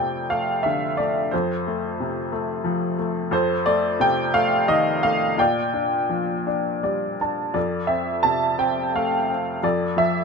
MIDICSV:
0, 0, Header, 1, 2, 480
1, 0, Start_track
1, 0, Key_signature, -1, "major"
1, 0, Tempo, 677201
1, 939, Time_signature, 6, 3, 24, 8
1, 3329, Tempo, 715990
1, 5249, Tempo, 690449
1, 7113, End_track
2, 0, Start_track
2, 0, Title_t, "Upright piano"
2, 0, Program_c, 0, 0
2, 0, Control_c, 0, 64, 127
2, 0, Note_on_c, 0, 41, 42
2, 0, Note_on_c, 0, 48, 34
2, 0, Note_on_c, 0, 57, 35
2, 0, Note_on_c, 0, 69, 39
2, 0, Note_on_c, 0, 72, 53
2, 0, Note_on_c, 0, 74, 54
2, 0, Note_on_c, 0, 79, 64
2, 188, Note_off_c, 0, 69, 0
2, 194, Note_off_c, 0, 79, 0
2, 206, Note_off_c, 0, 57, 0
2, 213, Note_on_c, 0, 77, 65
2, 216, Note_on_c, 0, 57, 39
2, 447, Note_on_c, 0, 76, 62
2, 463, Note_off_c, 0, 77, 0
2, 467, Note_on_c, 0, 50, 42
2, 689, Note_off_c, 0, 57, 0
2, 689, Note_off_c, 0, 74, 0
2, 689, Note_on_c, 0, 74, 62
2, 699, Note_on_c, 0, 57, 38
2, 701, Note_off_c, 0, 76, 0
2, 905, Note_off_c, 0, 41, 0
2, 911, Note_off_c, 0, 48, 0
2, 918, Note_off_c, 0, 74, 0
2, 930, Note_off_c, 0, 50, 0
2, 931, Note_off_c, 0, 72, 0
2, 931, Note_on_c, 0, 72, 58
2, 933, Note_off_c, 0, 57, 0
2, 945, Note_on_c, 0, 69, 40
2, 948, Note_on_c, 0, 41, 51
2, 949, Control_c, 0, 64, 0
2, 1056, Control_c, 0, 64, 127
2, 1185, Note_on_c, 0, 57, 43
2, 1419, Note_on_c, 0, 48, 38
2, 1635, Note_off_c, 0, 57, 0
2, 1646, Note_on_c, 0, 57, 48
2, 1874, Note_on_c, 0, 53, 49
2, 2084, Note_off_c, 0, 72, 0
2, 2091, Note_off_c, 0, 69, 0
2, 2105, Note_off_c, 0, 57, 0
2, 2116, Note_on_c, 0, 57, 46
2, 2329, Note_off_c, 0, 48, 0
2, 2331, Note_off_c, 0, 41, 0
2, 2338, Note_off_c, 0, 53, 0
2, 2348, Note_off_c, 0, 57, 0
2, 2348, Note_on_c, 0, 41, 59
2, 2351, Note_on_c, 0, 69, 55
2, 2358, Note_on_c, 0, 72, 74
2, 2365, Control_c, 0, 64, 0
2, 2501, Control_c, 0, 64, 127
2, 2593, Note_on_c, 0, 74, 85
2, 2595, Note_on_c, 0, 57, 47
2, 2605, Note_off_c, 0, 72, 0
2, 2835, Note_on_c, 0, 48, 48
2, 2843, Note_on_c, 0, 79, 90
2, 2844, Note_off_c, 0, 74, 0
2, 3052, Note_off_c, 0, 69, 0
2, 3065, Note_off_c, 0, 57, 0
2, 3075, Note_on_c, 0, 77, 86
2, 3076, Note_on_c, 0, 57, 56
2, 3092, Note_off_c, 0, 79, 0
2, 3319, Note_on_c, 0, 75, 84
2, 3322, Note_on_c, 0, 51, 55
2, 3332, Note_off_c, 0, 77, 0
2, 3548, Note_off_c, 0, 57, 0
2, 3553, Note_on_c, 0, 77, 80
2, 3558, Note_on_c, 0, 57, 48
2, 3564, Note_off_c, 0, 75, 0
2, 3764, Note_off_c, 0, 41, 0
2, 3766, Note_off_c, 0, 48, 0
2, 3778, Note_off_c, 0, 51, 0
2, 3786, Note_off_c, 0, 57, 0
2, 3787, Note_on_c, 0, 46, 57
2, 3793, Note_on_c, 0, 79, 74
2, 3798, Note_off_c, 0, 77, 0
2, 3799, Note_on_c, 0, 74, 57
2, 3804, Control_c, 0, 64, 0
2, 3901, Control_c, 0, 64, 127
2, 4027, Note_on_c, 0, 62, 43
2, 4266, Note_on_c, 0, 53, 39
2, 4507, Note_off_c, 0, 62, 0
2, 4517, Note_on_c, 0, 62, 43
2, 4752, Note_off_c, 0, 74, 0
2, 4762, Note_on_c, 0, 55, 39
2, 4762, Note_on_c, 0, 74, 48
2, 4984, Note_off_c, 0, 79, 0
2, 4991, Note_off_c, 0, 74, 0
2, 5005, Note_off_c, 0, 62, 0
2, 5015, Note_on_c, 0, 62, 34
2, 5016, Note_on_c, 0, 81, 43
2, 5218, Note_off_c, 0, 46, 0
2, 5218, Note_off_c, 0, 53, 0
2, 5230, Note_off_c, 0, 55, 0
2, 5234, Note_off_c, 0, 81, 0
2, 5235, Note_on_c, 0, 41, 49
2, 5235, Note_on_c, 0, 74, 59
2, 5243, Note_off_c, 0, 62, 0
2, 5250, Note_on_c, 0, 69, 43
2, 5258, Control_c, 0, 64, 0
2, 5397, Control_c, 0, 64, 127
2, 5466, Note_on_c, 0, 76, 61
2, 5475, Note_on_c, 0, 60, 42
2, 5492, Note_off_c, 0, 74, 0
2, 5713, Note_on_c, 0, 81, 74
2, 5724, Note_on_c, 0, 48, 37
2, 5728, Note_off_c, 0, 76, 0
2, 5947, Note_off_c, 0, 69, 0
2, 5952, Note_off_c, 0, 60, 0
2, 5962, Note_on_c, 0, 60, 45
2, 5964, Note_on_c, 0, 79, 70
2, 5971, Note_off_c, 0, 81, 0
2, 6216, Note_on_c, 0, 57, 47
2, 6217, Note_off_c, 0, 79, 0
2, 6219, Note_on_c, 0, 77, 60
2, 6440, Note_off_c, 0, 77, 0
2, 6446, Note_off_c, 0, 60, 0
2, 6457, Note_on_c, 0, 60, 42
2, 6659, Note_off_c, 0, 41, 0
2, 6661, Note_off_c, 0, 48, 0
2, 6680, Note_off_c, 0, 57, 0
2, 6687, Note_off_c, 0, 60, 0
2, 6689, Note_on_c, 0, 41, 55
2, 6693, Note_on_c, 0, 74, 70
2, 6696, Note_on_c, 0, 69, 49
2, 6701, Control_c, 0, 64, 0
2, 6831, Control_c, 0, 64, 127
2, 6915, Note_off_c, 0, 74, 0
2, 6920, Note_on_c, 0, 53, 47
2, 6931, Note_on_c, 0, 76, 75
2, 7113, Note_off_c, 0, 41, 0
2, 7113, Note_off_c, 0, 53, 0
2, 7113, Note_off_c, 0, 69, 0
2, 7113, Note_off_c, 0, 76, 0
2, 7113, End_track
0, 0, End_of_file